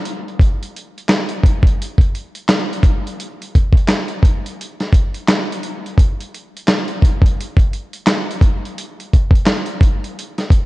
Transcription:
0.05 closed hi-hat medium
0.28 closed hi-hat soft
0.40 kick loud
0.40 closed hi-hat medium
0.63 closed hi-hat soft
0.77 closed hi-hat medium
0.98 closed hi-hat soft
1.09 snare loud
1.09 clap medium
1.09 closed hi-hat medium
1.29 closed hi-hat soft
1.44 kick medium
1.44 closed hi-hat medium
1.63 kick medium
1.67 closed hi-hat soft
1.82 closed hi-hat medium
1.98 kick medium
1.98 closed hi-hat soft
2.15 closed hi-hat medium
2.35 closed hi-hat soft
2.49 snare loud
2.49 clap loud
2.49 closed hi-hat medium
2.73 closed hi-hat soft
2.83 kick medium
2.83 closed hi-hat medium
3.07 closed hi-hat soft
3.20 closed hi-hat medium
3.42 closed hi-hat medium
3.55 kick medium
3.55 closed hi-hat medium
3.73 kick medium
3.77 closed hi-hat soft
3.88 snare medium
3.88 clap medium
3.88 closed hi-hat medium
4.08 closed hi-hat soft
4.23 kick medium
4.23 closed hi-hat medium
4.46 closed hi-hat soft
4.61 closed hi-hat medium
4.80 snare soft
4.80 closed hi-hat soft
4.92 kick medium
4.92 closed hi-hat medium
5.14 closed hi-hat soft
5.28 snare loud
5.28 clap medium
5.28 closed hi-hat medium
5.52 closed hi-hat soft
5.63 closed hi-hat medium
5.86 closed hi-hat soft
5.97 kick loud
5.97 closed hi-hat medium
6.20 closed hi-hat soft
6.34 closed hi-hat medium
6.56 closed hi-hat soft
6.68 snare loud
6.68 clap medium
6.68 closed hi-hat medium
6.88 closed hi-hat soft
7.02 kick medium
7.02 closed hi-hat medium
7.21 kick medium
7.26 closed hi-hat medium
7.40 closed hi-hat medium
7.56 kick medium
7.56 closed hi-hat soft
7.73 closed hi-hat medium
7.93 closed hi-hat medium
8.07 snare loud
8.07 clap loud
8.07 closed hi-hat medium
8.31 closed hi-hat soft
8.41 kick loud
8.41 closed hi-hat medium
8.65 closed hi-hat soft
8.78 closed hi-hat medium
9.00 closed hi-hat soft
9.13 kick medium
9.13 closed hi-hat medium
9.31 kick medium
9.35 closed hi-hat soft
9.46 snare medium
9.46 clap medium
9.46 closed hi-hat medium
9.66 closed hi-hat soft
9.81 kick loud
9.81 closed hi-hat medium
10.04 closed hi-hat soft
10.19 closed hi-hat medium
10.38 snare soft
10.38 closed hi-hat soft
10.51 kick medium
10.51 closed hi-hat medium

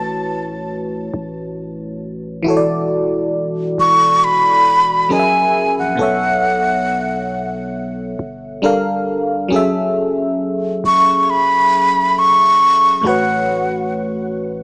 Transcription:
0.00 1.10 A1 loud
0.00 2.40 A3 medium
0.00 2.41 E4 medium
0.00 2.42 F#4 medium
0.00 2.43 B4 medium
0.00 2.44 C#5 medium
0.00 0.45 A5 medium
1.14 2.42 A1 loud
2.43 3.74 E1 loud
2.43 5.05 E3 medium
2.43 5.06 E4 medium
2.43 5.07 F#4 medium
2.48 5.08 A4 medium
2.48 2.54 C#5 medium
2.57 5.12 D5 medium
3.78 5.07 E1 loud
3.78 4.26 C#6 loud
4.24 5.14 B5 loud
5.09 5.78 F#1 loud
5.09 5.98 F#3 medium
5.09 5.99 C#4 medium
5.09 5.99 G#4 medium
5.09 5.99 A#4 medium
5.09 5.18 D#5 medium
5.09 5.78 G#5 loud
5.19 6.02 E5 medium
5.77 5.98 A#1 loud
5.77 7.50 F#5 medium
5.95 8.15 B1 loud
5.95 8.58 B2 medium
5.95 8.59 B3 medium
5.95 8.60 A4 medium
6.01 8.61 C#5 medium
6.01 8.62 E5 medium
8.19 9.48 G1 loud
8.62 9.51 G3 medium
8.62 9.51 D4 medium
8.62 9.52 A4 medium
8.62 9.52 A#4 medium
8.62 9.53 F5 medium
9.48 10.80 F#1 loud
9.48 12.99 F#3 medium
9.48 13.00 C#4 medium
9.48 13.01 G#4 medium
9.54 13.02 A4 medium
9.54 13.03 E5 medium
10.84 13.01 F#1 loud
10.84 11.23 C#6 loud
11.23 11.32 C#6 medium
11.30 12.20 B5 loud
12.19 13.08 C#6 loud
13.01 14.63 A1 loud
13.01 14.63 A2 medium
13.01 14.63 A3 medium
13.01 14.63 F#4 medium
13.07 14.63 B4 medium
13.07 14.63 C#5 medium
13.07 13.94 F#5 medium

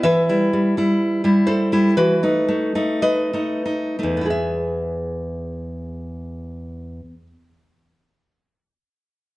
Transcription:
0.03 0.28 E3 soft
0.03 1.44 B4 soft
0.03 1.43 E5 medium
0.29 0.52 G3 soft
0.29 0.77 E4 soft
0.53 0.76 G3 soft
0.77 1.23 G3 soft
0.77 1.24 E4 soft
1.24 1.71 G3 soft
1.24 1.46 E4 soft
1.47 1.72 E4 soft
1.47 1.93 A4 soft
1.47 1.94 C5 medium
1.72 1.94 G3 soft
1.72 1.94 E4 soft
1.97 2.21 E3 soft
1.97 2.98 F#4 soft
1.97 2.98 B4 medium
2.23 2.47 A3 soft
2.23 2.74 D#4 soft
2.48 2.74 A3 soft
2.75 3.32 A3 soft
2.75 3.33 D#4 soft
3.02 3.61 B4 soft
3.02 3.62 D#5 medium
3.33 3.98 A3 soft
3.33 3.64 D#4 soft
3.65 3.98 D#4 soft
3.99 4.28 A3 soft
3.99 4.28 D#4 soft
4.03 6.99 E2 soft
4.17 7.13 B3 soft
4.21 4.30 E4 soft
4.26 7.22 G#4 soft
4.30 7.27 E5 soft

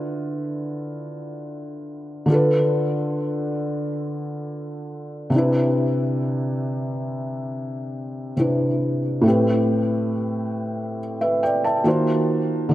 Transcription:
0.00 2.23 D3 medium
0.00 2.24 D4 medium
0.00 2.25 E4 medium
0.00 2.26 F4 medium
0.00 2.27 B4 medium
2.26 5.28 D3 medium
2.26 5.29 D4 medium
2.26 5.30 F4 medium
2.32 5.31 A4 medium
2.32 5.32 B4 medium
5.30 8.32 C3 medium
5.30 8.33 C4 medium
5.34 8.34 D4 medium
5.34 8.35 E4 medium
5.38 8.36 B4 medium
8.37 9.24 C3 medium
8.37 9.24 C4 medium
8.37 9.25 D4 medium
8.37 9.25 E4 medium
8.37 9.26 B4 medium
9.21 11.80 A2 medium
9.21 11.81 A3 medium
9.25 11.82 C4 medium
9.25 11.83 G4 medium
9.30 10.98 B4 medium
11.21 11.42 B4 medium
11.21 11.41 E5 medium
11.43 11.63 D5 medium
11.43 11.63 G5 medium
11.64 12.06 E5 medium
11.64 12.05 A5 medium
11.84 12.72 D#3 medium
11.84 12.72 A#3 medium
11.84 12.73 F4 medium
11.84 12.73 F#4 medium
11.84 12.74 C5 medium
12.69 12.74 D3 medium
12.69 12.74 D4 medium

